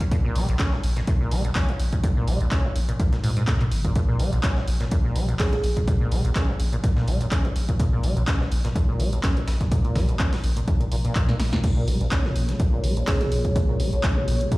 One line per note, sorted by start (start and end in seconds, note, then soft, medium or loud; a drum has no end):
0.00 0.04 A#2 medium
0.00 kick medium
0.00 closed hi-hat soft
0.00 closed hi-hat medium
0.11 0.16 A#2 medium
0.11 kick loud
0.11 closed hi-hat medium
0.25 0.37 A#2 medium
0.35 0.45 A#1 loud
0.35 0.46 G#3 medium
0.35 closed hi-hat medium
0.35 open hi-hat loud
0.49 0.66 A#1 medium
0.49 0.55 A#1 medium
0.49 closed hi-hat soft
0.59 0.74 C#4 medium
0.59 kick loud
0.59 snare loud
0.59 clap loud
0.59 closed hi-hat medium
0.73 0.76 A#2 medium
0.73 snare soft
0.83 1.02 A#1 loud
0.83 closed hi-hat medium
0.83 open hi-hat medium
0.96 1.00 A#2 medium
0.96 snare medium
0.96 closed hi-hat soft
1.07 1.12 A#2 medium
1.07 kick loud
1.07 closed hi-hat medium
1.21 1.33 A#2 medium
1.31 1.50 A#1 medium
1.31 1.42 G#3 medium
1.31 closed hi-hat medium
1.31 open hi-hat loud
1.45 1.51 A#1 medium
1.45 closed hi-hat soft
1.55 1.70 C#4 medium
1.55 kick loud
1.55 snare loud
1.55 clap loud
1.55 closed hi-hat medium
1.55 open hi-hat medium
1.69 1.72 A#2 medium
1.69 closed hi-hat soft
1.80 1.98 A#1 medium
1.80 closed hi-hat medium
1.80 open hi-hat medium
1.93 1.96 A#2 medium
1.93 kick medium
1.93 closed hi-hat medium
2.04 2.08 A#2 medium
2.04 kick loud
2.04 closed hi-hat medium
2.17 2.29 A#2 medium
2.28 2.37 A#1 loud
2.28 2.38 G#3 medium
2.28 closed hi-hat medium
2.28 open hi-hat loud
2.41 2.58 A#1 medium
2.41 2.47 A#1 medium
2.41 closed hi-hat soft
2.51 2.66 C#4 medium
2.51 kick loud
2.51 snare loud
2.51 clap loud
2.51 closed hi-hat medium
2.65 2.68 A#2 medium
2.76 2.94 A#1 loud
2.76 closed hi-hat medium
2.76 open hi-hat medium
2.89 2.92 A#2 medium
2.89 closed hi-hat soft
3.00 3.04 A#2 medium
3.00 kick loud
3.00 closed hi-hat medium
3.13 3.16 A#2 medium
3.13 snare soft
3.13 closed hi-hat soft
3.24 3.31 G#2 medium
3.24 3.42 A#2 medium
3.24 closed hi-hat medium
3.24 open hi-hat loud
3.37 3.43 G#2 loud
3.37 closed hi-hat soft
3.47 3.55 A#2 loud
3.47 kick loud
3.47 snare loud
3.47 clap loud
3.47 closed hi-hat medium
3.60 3.64 A#2 loud
3.60 clap soft
3.60 closed hi-hat soft
3.72 3.90 G#1 medium
3.72 closed hi-hat medium
3.72 open hi-hat medium
3.85 3.94 A#2 medium
3.85 kick medium
3.85 closed hi-hat soft
3.96 4.00 A#2 medium
3.96 kick loud
3.96 closed hi-hat medium
4.09 4.21 A#2 medium
4.19 4.29 A#1 loud
4.19 4.30 G#3 medium
4.19 closed hi-hat medium
4.19 open hi-hat loud
4.33 4.39 A#1 medium
4.33 4.50 A#1 medium
4.33 closed hi-hat soft
4.43 4.58 C#4 medium
4.43 kick loud
4.43 snare loud
4.43 clap loud
4.43 closed hi-hat medium
4.56 4.60 A#2 medium
4.56 snare soft
4.67 4.86 A#1 loud
4.67 closed hi-hat medium
4.67 open hi-hat medium
4.81 4.84 A#2 medium
4.81 snare medium
4.81 closed hi-hat soft
4.91 4.96 A#2 medium
4.91 kick loud
4.91 closed hi-hat medium
5.05 5.17 A#2 medium
5.16 5.34 A#1 medium
5.16 5.26 G#3 medium
5.16 closed hi-hat medium
5.16 open hi-hat loud
5.29 5.35 A#1 medium
5.29 closed hi-hat soft
5.39 5.54 C#4 medium
5.39 5.48 G#4 medium
5.39 kick loud
5.39 snare loud
5.39 clap loud
5.39 closed hi-hat medium
5.39 open hi-hat medium
5.53 5.56 A#2 medium
5.53 5.60 G#4 medium
5.53 closed hi-hat soft
5.64 5.82 A#1 medium
5.64 closed hi-hat medium
5.64 open hi-hat medium
5.76 5.80 A#2 medium
5.76 kick medium
5.76 closed hi-hat medium
5.88 5.92 A#2 medium
5.88 kick loud
5.88 closed hi-hat medium
6.01 6.13 A#2 medium
6.11 6.21 A#1 loud
6.11 6.22 G#3 medium
6.11 closed hi-hat medium
6.11 open hi-hat loud
6.25 6.31 A#1 medium
6.25 6.42 A#1 medium
6.25 closed hi-hat soft
6.36 6.50 C#4 medium
6.36 kick loud
6.36 snare loud
6.36 clap loud
6.36 closed hi-hat medium
6.49 6.52 A#2 medium
6.60 6.78 A#1 loud
6.60 closed hi-hat medium
6.60 open hi-hat medium
6.73 6.76 A#2 medium
6.73 closed hi-hat medium
6.84 6.88 A#2 medium
6.84 kick loud
6.84 closed hi-hat medium
6.97 7.09 A#2 medium
6.97 snare soft
7.08 7.26 A#1 medium
7.08 7.18 G#3 medium
7.08 closed hi-hat medium
7.08 open hi-hat loud
7.21 7.27 A#1 medium
7.21 closed hi-hat soft
7.21 closed hi-hat medium
7.31 7.46 C#4 medium
7.31 kick loud
7.31 snare loud
7.31 clap loud
7.31 closed hi-hat medium
7.45 7.48 A#2 medium
7.45 closed hi-hat soft
7.56 7.74 A#1 medium
7.56 closed hi-hat medium
7.56 open hi-hat medium
7.69 7.72 A#2 medium
7.69 kick medium
7.69 closed hi-hat soft
7.69 closed hi-hat medium
7.80 7.84 A#2 medium
7.80 kick loud
7.80 closed hi-hat medium
7.93 8.05 A#2 medium
8.03 8.13 A#1 loud
8.03 8.14 G#3 medium
8.03 closed hi-hat medium
8.03 open hi-hat loud
8.17 8.23 A#1 medium
8.17 8.34 A#1 medium
8.17 closed hi-hat soft
8.27 8.42 C#4 medium
8.27 kick loud
8.27 snare loud
8.27 clap loud
8.27 closed hi-hat medium
8.41 8.44 A#2 medium
8.41 snare soft
8.51 8.70 A#1 loud
8.51 closed hi-hat medium
8.51 open hi-hat medium
8.65 8.68 A#2 medium
8.65 snare medium
8.65 closed hi-hat medium
8.76 8.80 A#2 medium
8.76 kick loud
8.76 closed hi-hat medium
8.89 9.01 A#2 medium
9.00 9.18 A#1 medium
9.00 9.10 G#3 medium
9.00 closed hi-hat medium
9.00 open hi-hat loud
9.13 9.19 A#1 medium
9.13 closed hi-hat medium
9.23 9.38 C#4 medium
9.23 kick loud
9.23 snare loud
9.23 clap loud
9.23 closed hi-hat medium
9.23 open hi-hat medium
9.37 9.40 A#2 medium
9.37 closed hi-hat soft
9.48 9.66 A#1 medium
9.48 snare loud
9.48 closed hi-hat medium
9.48 open hi-hat medium
9.61 9.64 A#2 medium
9.61 kick medium
9.61 snare soft
9.61 closed hi-hat medium
9.71 9.76 A#2 medium
9.71 kick loud
9.71 closed hi-hat medium
9.85 9.97 A#2 medium
9.85 closed hi-hat soft
9.96 10.05 A#1 loud
9.96 10.06 G#3 medium
9.96 kick medium
9.96 snare loud
9.96 open hi-hat medium
9.96 open hi-hat loud
10.09 10.15 A#1 medium
10.09 10.26 A#1 medium
10.09 closed hi-hat soft
10.19 10.34 C#4 medium
10.19 kick loud
10.19 clap loud
10.19 closed hi-hat medium
10.33 10.36 A#2 medium
10.33 snare loud
10.33 closed hi-hat soft
10.33 open hi-hat medium
10.44 10.62 A#1 loud
10.44 open hi-hat medium
10.56 10.60 A#2 medium
10.56 closed hi-hat medium
10.68 10.72 A#2 medium
10.68 kick loud
10.68 closed hi-hat medium
10.80 10.84 A#2 medium
10.80 closed hi-hat soft
10.92 11.10 A#1 medium
10.92 10.96 A#2 medium
10.92 closed hi-hat medium
10.92 open hi-hat loud
11.05 11.14 A#2 loud
11.05 closed hi-hat soft
11.05 closed hi-hat medium
11.15 11.20 A#2 medium
11.15 kick loud
11.15 clap loud
11.15 closed hi-hat medium
11.29 11.35 A#2 medium
11.29 snare soft
11.29 closed hi-hat soft
11.40 11.58 A#1 loud
11.40 snare loud
11.40 snare medium
11.40 closed hi-hat medium
11.40 open hi-hat medium
11.53 11.59 A#2 loud
11.53 kick medium
11.53 snare medium
11.53 closed hi-hat medium
11.64 11.68 A#2 medium
11.64 14.58 A#3 medium
11.64 14.58 F4 medium
11.64 14.58 G#4 medium
11.64 14.58 C#5 medium
11.64 kick loud
11.64 closed hi-hat medium
11.64 crash medium
11.77 11.89 A#2 medium
11.87 11.97 A#1 loud
11.87 11.98 G#3 medium
11.87 closed hi-hat medium
11.87 open hi-hat loud
12.01 12.18 A#1 medium
12.01 12.07 A#1 medium
12.01 closed hi-hat soft
12.12 12.26 C#4 medium
12.12 kick loud
12.12 snare loud
12.12 clap loud
12.12 closed hi-hat medium
12.25 12.50 A#2 medium
12.25 snare soft
12.36 12.54 A#1 loud
12.36 closed hi-hat medium
12.36 open hi-hat medium
12.49 12.55 A#3 loud
12.49 snare medium
12.49 closed hi-hat medium
12.60 12.64 A#2 medium
12.60 kick loud
12.60 closed hi-hat medium
12.73 12.85 A#2 medium
12.84 13.02 A#1 medium
12.84 12.94 G#3 medium
12.84 closed hi-hat medium
12.84 open hi-hat loud
12.97 13.03 A#1 medium
12.97 closed hi-hat medium
13.07 13.22 C#4 medium
13.07 13.16 G#4 medium
13.07 kick loud
13.07 snare loud
13.07 clap loud
13.07 closed hi-hat medium
13.07 open hi-hat medium
13.21 13.46 A#2 medium
13.21 13.28 G#4 medium
13.21 closed hi-hat soft
13.32 13.50 A#1 medium
13.32 closed hi-hat medium
13.32 open hi-hat medium
13.45 13.51 A#3 medium
13.45 kick medium
13.45 closed hi-hat medium
13.56 13.60 A#2 medium
13.56 kick loud
13.56 closed hi-hat medium
13.69 13.81 A#2 medium
13.80 13.89 A#1 loud
13.80 13.90 G#3 medium
13.80 closed hi-hat medium
13.80 open hi-hat loud
13.93 14.10 A#1 medium
13.93 13.99 A#1 medium
13.93 closed hi-hat soft
14.04 14.18 C#4 medium
14.04 kick loud
14.04 snare loud
14.04 clap loud
14.04 closed hi-hat medium
14.17 14.42 A#2 medium
14.28 14.46 A#1 loud
14.28 closed hi-hat medium
14.28 open hi-hat loud
14.41 14.47 A#3 medium
14.41 closed hi-hat medium
14.52 14.56 A#2 medium
14.52 kick loud
14.52 closed hi-hat medium